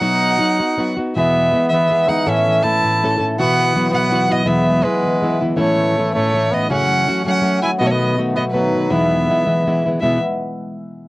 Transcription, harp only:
X:1
M:3/4
L:1/8
Q:1/4=162
K:E
V:1 name="Harp" clef=bass
z6 | E, G, B, E, e E, | A,, E, A, A,, E A,, | B,, E, F, B,, E B,, |
E, G, B, E, e E, | A,, E, A, A,, E A,, | F, A, C F, f F, | B,, F, A, B,, D B,, |
E, G, B, E, e E, | [E,G,B,E] z4 z |]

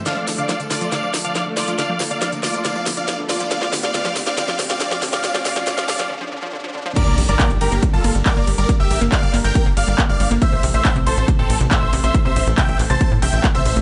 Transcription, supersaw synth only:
X:1
M:4/4
L:1/16
Q:1/4=139
K:Dm
V:1 name="Supersaw synth"
[df]2 z [df]2 z [Fd]2 [df]2 z [df]2 z [Fd]2 | [df]2 z [df]2 z [Fd]2 [df]2 z [df]2 z [Fd]2 | [df]2 z [df] [df]2 z [df] [df]2 z [df] [df]2 z [df] | [df]2 [df]2 [df]2 [df]2 z8 |
[Bd]2 z [Bd]2 z [GB]2 z [FA]2 z [Bd]2 z [Bd] | z [Ge]2 z [df]2 z [Bg]2 z [df]2 z [df]2 z | [ce]2 z [ce]2 z [Ac]2 z [CA]2 z [ce]2 z [ce] | z [ce]2 z [eg]2 z [ca]2 z [eg]2 z [ce]2 z |]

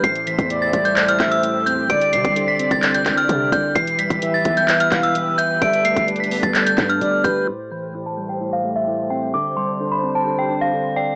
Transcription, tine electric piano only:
X:1
M:4/4
L:1/8
Q:1/4=129
K:Am
V:1 name="Tine electric piano" clef=bass
A,, E, A,, G, A,, A, A,, C | D, G, D, C D, D D, d | E, G, E, B, E, E E, e | G, A, G, B, G, D G, G |
A,, E, A,, G, A,, A, A,, C | D, G, D, C D, D D, d |]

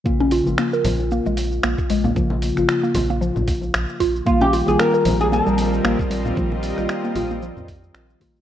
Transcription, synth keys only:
X:1
M:4/4
L:1/16
Q:"Swing 16ths" 1/4=114
K:Bbdor
V:1 name="Synth keys" clef=bass
[D,F,B,F]3 [D,F,B,F]12- [D,F,B,F] | [D,F,B,F]3 [D,F,B,F]12- [D,F,B,F] | [E,G,B,F]3 [E,G,B,F]12- [E,G,B,F] | [E,G,B,F]3 [E,G,B,F]8- [E,G,B,F]3 [E,G,B,F]2 |]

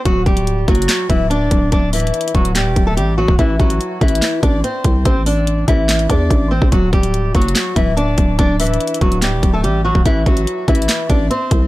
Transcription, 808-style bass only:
X:1
M:4/4
L:1/16
Q:1/4=144
K:Dmix
V:1 name="808-style bass" clef=bass
D,,,2 D,,,4 F,,,2 z2 D,,,4 D,,,2 | D,,,4 z2 D,,,3 E,,, D,,,2 A,,,3 C,,, | A,,,2 A,,,2 z2 A,,,2 z2 A,,,2 z2 C,,2 | A,,,6 A,,,4 E,,2 A,,,3 A,,, |
D,,,2 D,,,4 F,,,2 z2 D,,,4 D,,,2 | D,,,4 z2 D,,,3 E,,, D,,,2 A,,,3 C,,, | A,,,2 A,,,2 z2 A,,,2 z2 A,,,2 z2 C,,2 |]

